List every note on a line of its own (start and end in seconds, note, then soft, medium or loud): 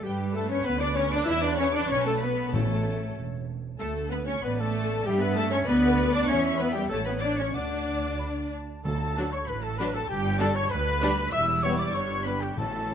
0.04 0.56 G2 loud
0.04 0.18 G3 medium
0.04 0.34 G3 medium
0.04 0.35 G3 loud
0.04 0.35 G4 medium
0.04 0.35 G4 loud
0.04 2.49 B4 medium
0.04 0.14 G5 loud
0.32 0.49 A3 loud
0.32 0.50 A3 medium
0.32 0.51 A3 medium
0.32 0.50 A4 medium
0.32 0.51 A4 loud
0.36 0.51 A5 loud
0.49 0.57 C#4 loud
0.49 0.65 C#4 loud
0.49 0.66 C#4 loud
0.49 0.66 C#5 loud
0.49 0.67 C#5 loud
0.49 0.67 C#6 loud
0.64 1.17 D2 loud
0.64 0.80 B3 loud
0.64 0.72 B3 loud
0.64 0.81 B3 loud
0.64 0.81 B4 loud
0.64 0.82 B4 loud
0.64 0.82 B5 loud
0.79 0.96 D4 loud
0.79 0.87 D4 loud
0.79 0.97 D4 loud
0.79 0.96 D5 loud
0.79 0.97 D6 loud
0.95 1.11 C#4 loud
0.95 1.02 C#4 loud
0.95 1.12 C#4 loud
0.95 1.03 C#5 loud
0.95 1.12 C#5 loud
0.95 1.12 C#6 loud
1.10 1.18 D4 loud
1.10 1.28 D4 loud
1.10 1.19 D5 loud
1.10 1.27 D6 loud
1.25 1.80 E2 loud
1.25 1.33 E4 loud
1.25 1.43 E4 loud
1.25 1.43 E5 loud
1.25 1.42 E6 loud
1.42 1.50 D4 loud
1.42 1.59 D4 loud
1.42 1.59 D5 loud
1.42 1.50 D5 loud
1.42 1.48 D6 loud
1.57 1.64 C#4 loud
1.57 1.65 C#4 loud
1.57 1.75 C#5 loud
1.57 1.74 C#5 loud
1.57 1.73 C#6 loud
1.72 1.80 D4 loud
1.72 1.90 D4 loud
1.72 1.90 D5 loud
1.72 1.83 D5 loud
1.72 1.89 D6 loud
1.88 2.43 B1 loud
1.88 2.06 C#4 loud
1.88 2.05 C#5 loud
1.88 1.98 C#5 loud
1.88 2.06 C#6 loud
2.04 2.21 A3 loud
2.04 2.22 A3 loud
2.04 2.21 A4 loud
2.04 2.14 A4 loud
2.04 2.21 A5 loud
2.20 2.53 B3 loud
2.20 2.54 B3 loud
2.20 2.52 B4 loud
2.20 2.37 B4 medium
2.20 2.53 B5 loud
2.51 3.06 A1 loud
2.51 3.44 A2 loud
2.51 3.16 A3 medium
2.51 3.17 A3 medium
2.51 3.16 A3 medium
2.51 3.15 A4 medium
2.51 3.46 C#5 medium
2.51 3.16 A5 loud
3.16 3.69 E1 medium
3.79 4.33 D2 loud
3.79 3.94 A3 medium
3.79 4.10 A3 medium
3.79 3.88 A3 loud
3.79 3.94 A4 medium
3.79 4.10 A4 loud
3.79 3.87 A5 loud
4.10 4.17 B3 loud
4.10 4.28 B3 loud
4.10 4.18 B3 medium
4.10 4.26 B4 medium
4.10 4.27 B4 loud
4.10 4.18 B5 loud
4.27 4.34 C#4 loud
4.27 4.43 C#4 loud
4.27 4.34 C#4 loud
4.27 4.33 C#5 medium
4.27 4.43 C#5 medium
4.27 4.43 C#6 loud
4.43 4.95 A1 medium
4.43 4.49 B3 medium
4.43 4.59 B3 medium
4.43 4.59 B3 loud
4.43 4.59 B4 medium
4.43 4.62 B4 medium
4.43 5.08 D5 loud
4.43 4.59 B5 loud
4.58 5.05 A3 loud
4.58 5.06 A3 loud
4.58 5.05 A4 loud
4.58 5.06 A4 loud
4.58 5.05 A5 loud
5.05 5.57 G2 loud
5.05 5.21 G3 loud
5.05 5.13 G3 loud
5.05 5.22 G4 loud
5.05 5.21 G4 loud
5.05 5.68 E5 loud
5.05 5.22 G5 loud
5.20 5.37 B3 loud
5.20 5.36 B4 loud
5.20 5.38 B4 loud
5.20 5.37 B5 loud
5.35 5.44 A3 loud
5.35 5.52 A3 loud
5.35 5.53 A3 loud
5.35 5.51 A4 loud
5.35 5.54 A4 loud
5.35 5.51 A5 loud
5.51 5.58 C#4 loud
5.51 5.59 C#4 loud
5.51 5.68 C#4 loud
5.51 5.57 C#5 loud
5.51 5.68 C#5 loud
5.51 5.59 C#6 loud
5.66 6.18 D2 loud
5.66 6.12 B3 loud
5.66 6.14 B3 loud
5.66 6.13 B3 loud
5.66 6.12 B4 loud
5.66 6.29 D5 loud
5.66 6.12 B5 loud
6.13 6.29 D4 loud
6.13 6.20 D4 loud
6.13 6.27 D5 loud
6.13 6.29 D5 loud
6.13 6.28 D6 loud
6.27 6.87 E2 loud
6.27 6.37 C#4 loud
6.27 6.43 C#4 loud
6.27 6.59 C#4 loud
6.27 6.42 C#5 loud
6.27 6.60 C#5 loud
6.27 6.90 E5 loud
6.27 6.59 C#6 loud
6.59 6.66 B3 loud
6.59 6.67 B3 loud
6.59 6.75 B3 loud
6.59 6.73 B4 loud
6.59 6.75 B4 loud
6.59 6.75 B5 loud
6.74 6.90 G3 medium
6.74 6.82 G3 loud
6.74 6.91 G3 loud
6.74 6.81 G4 loud
6.74 6.90 G4 loud
6.74 6.90 G5 loud
6.89 7.53 A1 loud
6.89 6.97 A3 loud
6.89 6.99 A3 loud
6.89 6.97 A4 loud
6.89 7.07 A4 loud
6.89 7.55 C#5 loud
6.89 7.06 A5 loud
7.05 7.13 B3 loud
7.05 7.22 B3 loud
7.05 7.23 B4 loud
7.05 7.13 B4 loud
7.05 7.12 B5 loud
7.09 7.16 B3 loud
7.20 7.38 D4 loud
7.20 7.39 D4 loud
7.20 7.39 D5 loud
7.20 7.38 D5 loud
7.20 7.27 D6 loud
7.24 7.39 D4 loud
7.37 7.55 C#4 medium
7.37 7.45 C#4 medium
7.37 7.56 C#4 medium
7.37 7.54 C#5 medium
7.37 7.46 C#5 loud
7.37 7.54 C#6 loud
7.54 8.65 D2 medium
7.54 8.51 D4 loud
7.54 8.51 D4 medium
7.54 8.52 D4 medium
7.54 8.51 D5 medium
7.54 8.52 D5 loud
7.54 8.13 F#5 medium
7.54 8.52 D6 medium
8.19 8.26 B5 medium
8.53 8.84 A5 medium
8.85 9.37 D2 medium
8.85 9.74 D3 loud
8.85 9.33 A4 medium
8.85 9.29 A4 medium
8.85 9.34 A5 medium
8.85 9.29 A5 loud
9.17 9.31 F#3 medium
9.17 9.28 F#3 medium
9.17 9.31 D4 medium
9.17 9.28 D4 medium
9.31 9.50 C#5 medium
9.31 9.49 C#5 medium
9.31 9.39 C#5 medium
9.31 9.48 C#6 loud
9.31 9.50 C#6 medium
9.47 9.99 A1 medium
9.47 10.00 A2 medium
9.47 9.54 B4 medium
9.47 9.64 B4 medium
9.47 9.65 B4 medium
9.47 9.63 B5 loud
9.47 9.63 B5 medium
9.63 9.77 A4 medium
9.63 9.78 A4 loud
9.63 9.80 A4 medium
9.63 9.69 A5 medium
9.63 9.79 A5 loud
9.78 9.93 F#3 medium
9.78 9.90 F#3 medium
9.78 9.93 D4 loud
9.78 9.90 D4 medium
9.78 9.96 B4 medium
9.78 9.96 B4 loud
9.78 9.94 B4 loud
9.78 9.84 B5 loud
9.78 9.94 B5 medium
9.94 10.09 A4 loud
9.94 10.09 A4 medium
9.94 10.10 A4 loud
9.94 10.09 A5 loud
9.94 10.01 A5 medium
10.09 10.61 G1 loud
10.09 10.61 G2 loud
10.09 10.42 G4 loud
10.09 10.40 G4 loud
10.09 10.39 G5 loud
10.09 10.40 G5 loud
10.40 10.54 G3 loud
10.40 10.51 G3 loud
10.40 10.55 D4 loud
10.40 10.52 D4 loud
10.40 10.54 A4 loud
10.40 10.56 A4 loud
10.40 10.58 A4 loud
10.40 10.57 A5 loud
10.40 10.56 A5 loud
10.55 10.71 C#5 loud
10.55 10.73 C#5 loud
10.55 10.70 C#6 loud
10.55 10.72 C#6 loud
10.71 11.22 D2 loud
10.71 11.23 D2 loud
10.71 11.31 B4 loud
10.71 11.33 B4 loud
10.71 11.34 B5 loud
10.71 11.31 B5 loud
11.01 11.16 G3 loud
11.01 11.13 G3 loud
11.01 11.16 D4 loud
11.01 11.13 D4 loud
11.32 11.90 E1 loud
11.32 11.90 E2 loud
11.32 12.53 G3 medium
11.32 11.90 E4 medium
11.32 11.46 E5 loud
11.32 11.41 E5 loud
11.32 11.47 E5 loud
11.32 11.63 E6 loud
11.32 11.65 E6 loud
11.63 11.74 G3 loud
11.63 11.75 B3 loud
11.63 11.70 C#5 loud
11.63 11.82 C#5 loud
11.63 11.78 C#6 loud
11.78 11.96 D5 medium
11.78 11.85 D5 loud
11.78 11.97 D5 loud
11.78 11.94 D6 loud
11.78 11.85 D6 loud
11.94 12.57 G1 medium
11.94 12.58 G2 medium
11.94 12.57 D4 medium
11.94 12.02 C#5 medium
11.94 12.25 C#5 loud
11.94 12.26 C#5 loud
11.94 12.25 C#6 loud
11.94 12.01 C#6 loud
12.25 12.37 G3 medium
12.25 12.37 B3 medium
12.25 12.32 B4 medium
12.25 12.44 B4 medium
12.25 12.41 B5 loud
12.25 12.42 B5 medium
12.40 12.47 G4 medium
12.40 12.58 G4 medium
12.40 12.57 G5 loud
12.40 12.57 G5 medium
12.55 12.94 A1 medium
12.55 12.94 A2 loud
12.55 12.94 A2 medium
12.55 12.94 E3 medium
12.55 12.94 C#4 medium
12.55 12.94 A4 medium
12.55 12.94 A5 medium
12.55 12.94 A5 loud
12.91 12.94 E3 medium
12.91 12.94 C#4 medium